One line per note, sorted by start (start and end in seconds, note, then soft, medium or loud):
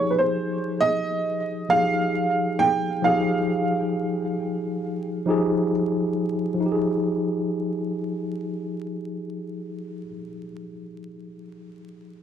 0.00 0.77 F3 medium
0.00 0.77 D#4 medium
0.00 0.78 G4 medium
0.00 0.79 G#4 medium
0.00 0.11 C#5 medium
0.10 0.19 B4 soft
0.18 0.76 C5 medium
0.80 1.73 D#5 loud
1.69 2.69 F3 medium
1.69 2.69 D#4 medium
1.69 2.70 G4 medium
1.69 2.62 F5 loud
1.73 2.71 G#4 medium
2.59 3.05 G5 loud
3.02 4.34 F3 medium
3.02 4.35 D#4 medium
3.02 4.36 G4 medium
3.02 5.69 F5 medium
3.07 4.37 G#4 loud
5.26 6.26 F3 loud
5.26 6.27 D#4 medium
5.26 6.28 G4 medium
5.30 6.29 G#4 loud
6.54 10.03 F3 medium
6.60 10.09 D#4 medium
6.66 10.14 G4 medium
6.72 10.20 G#4 medium